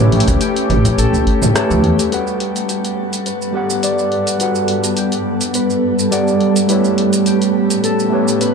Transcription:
Already playing: A1 A3 C#4 E4 G4 A4 B4 C#5
0.12 open hi-hat, high conga
0.20 open hi-hat
0.28 C#2, kick, open hi-hat, low conga, shaker
0.41 G4, open hi-hat, shaker
0.56 open hi-hat, shaker
0.70 A1, kick, mid tom, open hi-hat
0.85 open hi-hat, high conga, low conga, shaker
0.98 A1 A4, open hi-hat, shaker
1.13 C#2, shaker
1.27 kick, open hi-hat
1.42 mid tom, low conga, shaker
1.54 A3 G4 A4 B4 C#5, cross-stick, open hi-hat, shaker
1.70 C#2, high conga, shaker
1.84 E2, open hi-hat
1.99 open hi-hat, shaker
2.10 G2 G3 B3 F#4 A4 B4 F#5, open hi-hat, shaker
2.14 F#5
2.27 shaker
2.40 open hi-hat
2.56 open hi-hat, shaker
2.69 G4, open hi-hat, shaker
2.85 open hi-hat, shaker
3.13 open hi-hat, shaker
3.26 B4, open hi-hat, shaker
3.42 shaker
3.53 G3 G4 B4
3.57 F#5
3.70 shaker
3.83 D5, open hi-hat, shaker
3.99 shaker
4.12 open hi-hat
4.27 open hi-hat, shaker
4.38 G3 F#4 B4, open hi-hat, shaker
4.43 F#5
4.55 shaker
4.68 open hi-hat
4.84 open hi-hat, shaker
4.97 G4, open hi-hat, shaker
5.12 open hi-hat, shaker
5.41 open hi-hat, shaker
5.54 B4, open hi-hat, shaker
5.70 shaker
5.99 shaker
6.11 G3 G4 B4 D5 F#5, open hi-hat, shaker
6.28 shaker
6.41 open hi-hat
6.56 open hi-hat, shaker
6.67 A2 A3 C#4 E4 G4 B4, open hi-hat, shaker
6.72 C#5
6.84 shaker
6.98 open hi-hat
7.13 open hi-hat, shaker
7.26 G4, open hi-hat, shaker
7.42 open hi-hat, shaker
7.70 open hi-hat, shaker
7.84 A4, open hi-hat, shaker
7.99 shaker
8.10 A3 G4 B4
8.15 C#5
8.28 shaker
8.41 B4, open hi-hat, shaker

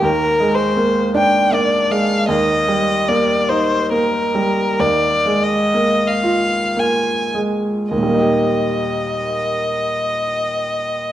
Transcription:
0.02 D#2 A#4
0.40 G#3
0.55 C5
0.77 A#3
1.15 D4 G5
1.52 A#3 D5
1.90 G#3 F5
2.28 D#2 D#5
2.68 G3
3.09 A#3 D5
3.49 D#4 C5
3.91 A#3 A#4
4.35 G3
4.79 D#2 D5
5.26 G#3
5.43 D#5
5.74 A#3
6.07 F5
6.23 F4
6.77 A#3 G#5
7.35 G#3
7.91 D#2 D#5
7.98 A#2
8.03 G3
8.08 A#3
8.14 D#4
8.20 G4

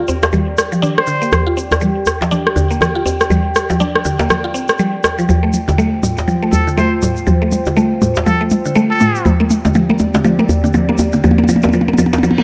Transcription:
Already playing: G4 D5 G5
0.08 C4, djembe tone, shaker
0.23 cross-stick, djembe slap, shaker
0.32 G3, mid tom, djembe tone, shaker
0.58 cross-stick, shaker
0.72 F3, shaker
0.82 D4, mid tom, shaker
0.98 C5, cross-stick
1.07 D3, shaker
1.22 A#3, shaker
1.32 cross-stick, mid tom, djembe bass, shaker
1.47 F4
1.57 C4, shaker
1.71 cross-stick, djembe slap, djembe tone, shaker
1.81 G3, mid tom, shaker
2.06 cross-stick, djembe tone, shaker
2.21 F3, djembe slap, shaker
2.31 D4, mid tom, shaker
2.47 cross-stick
2.56 D3, djembe bass, shaker
2.71 A#3, shaker
2.81 cross-stick, mid tom, djembe tone, shaker
2.95 F4
3.06 C4, djembe tone, shaker
3.20 cross-stick, shaker
3.30 G3, mid tom, djembe bass, shaker
3.55 cross-stick, shaker
3.70 F3, djembe slap, djembe tone, shaker
3.80 D4, mid tom, shaker
3.95 cross-stick
4.05 D3, djembe tone, shaker
4.19 A#3, djembe slap, shaker
4.30 cross-stick, mid tom, djembe tone, shaker
4.44 F4
4.54 C4, shaker
4.68 cross-stick, shaker
4.79 G3, mid tom, shaker
5.04 cross-stick, djembe slap, shaker
5.19 F3, shaker
5.29 F3 F4 C5, mid tom, djembe bass, shaker
5.43 A3
5.53 mid tom, shaker
5.68 D3, djembe slap, djembe tone, shaker
5.78 A3, mid tom, shaker
6.03 A2, mid tom, djembe tone, shaker
6.18 djembe slap, shaker
6.28 F3, mid tom, shaker
6.43 A3
6.52 A4, mid tom, djembe bass, shaker
6.67 D3, shaker
6.77 A3 C5, mid tom, djembe tone, shaker
7.02 A2, mid tom, djembe tone, shaker
7.17 shaker
7.27 F3, mid tom, djembe bass, shaker
7.42 A3
7.52 mid tom, shaker
7.66 D3, djembe slap, djembe tone, shaker
7.77 A3, mid tom, shaker
8.02 A2, mid tom, djembe tone, shaker
8.15 djembe slap, shaker
8.26 F3 A4, mid tom, djembe tone, shaker
8.41 A3
8.50 mid tom, shaker
8.65 D3, shaker
8.75 A3, mid tom, shaker
8.90 A4
9.00 A2, mid tom, shaker
9.15 shaker
9.25 F3 C4 G4 D5, mid tom, djembe bass, shaker
9.40 A#3, mid tom
9.50 mid tom, shaker
9.65 D3, mid tom, djembe slap, djembe tone, shaker
9.74 F3, mid tom, shaker
9.90 A#3, mid tom
9.99 mid tom, djembe tone, shaker
10.14 D3, mid tom, djembe slap, shaker
10.24 F3, mid tom, shaker
10.39 A#3, mid tom
10.49 mid tom, djembe bass, shaker
10.64 D3, mid tom, shaker
10.74 F3, mid tom, djembe tone, shaker
10.89 A#3, mid tom
10.98 mid tom, djembe tone, shaker
11.12 D3, mid tom, shaker
11.24 F3, mid tom, djembe bass, shaker
11.31 mid tom
11.38 A#3, mid tom
11.44 mid tom
11.48 F3, mid tom, shaker
11.56 mid tom
11.62 A#3, mid tom, djembe slap, djembe tone, shaker
11.69 mid tom, shaker
11.73 F3, mid tom
11.81 mid tom
11.88 A#3, mid tom
11.93 mid tom
11.98 F3, mid tom, djembe tone, shaker
12.06 mid tom
12.13 A#3, mid tom, djembe slap, shaker
12.18 mid tom
12.23 F3, mid tom, reverse cymbal, djembe tone, shaker
12.31 mid tom
12.38 A#3, mid tom

